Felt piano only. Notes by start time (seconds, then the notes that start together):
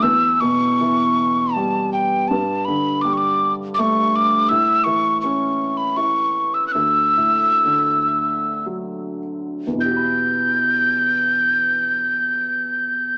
0.03 E2
0.42 B2
0.81 E3
1.56 G3
2.31 G2
2.68 D3
3.05 G3
3.79 A3
4.51 A2
4.86 E3
5.24 C#4
5.97 E4
6.75 D2
7.17 A2
7.64 D3
8.66 F#3
9.67 E2
9.73 B2
9.78 E4
9.84 G4
9.90 F#4
9.96 B5